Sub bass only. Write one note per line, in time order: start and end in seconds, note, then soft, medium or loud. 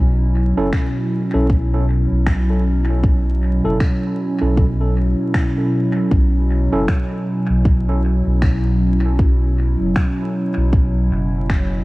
0.00 0.53 B1 loud
0.57 0.71 F#1 medium
1.34 2.07 B1 medium
2.11 3.61 B1 medium
3.65 3.78 F#1 medium
4.42 5.14 B1 medium
6.11 6.68 B1 loud
6.72 6.86 F#1 medium
7.49 8.22 B1 medium
8.26 9.76 B1 medium
9.80 9.94 F#1 medium
10.57 11.11 B1 medium
11.11 11.84 F#1 medium